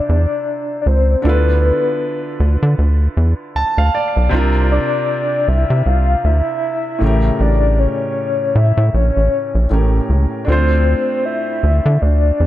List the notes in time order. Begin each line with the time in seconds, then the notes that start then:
Already playing: C3 D4 E4 F4 C5 D5
0.09 E2
0.81 D5
0.86 C#2 C5
1.22 D2 D3 D4 E4 B4
1.26 F4 A4 B4
2.40 D2
2.63 D3
2.78 D2
3.17 E2
3.55 D2 A5
3.78 D2 F5
3.95 D5
4.16 B1
4.29 C2 C3 C4 D4
4.35 F4 A#4
4.71 D5
5.48 C2 E5
5.70 C3
5.86 C2 F5
6.24 D2 E5
6.99 A1 A2 C#3 A3
7.04 G4 A#4
7.40 A1 D5
7.79 C#5
8.55 A2 E5
8.77 A2
8.94 A#1 C#5
9.17 A1
9.55 A#1
9.70 A1 A2 A3 C#4 G4 A#4
10.09 C#2
10.45 D2 A3 C4 D4 C5
10.50 F4 C5
11.25 E5
11.63 D2
11.86 D3
12.01 D2 D5
12.40 E2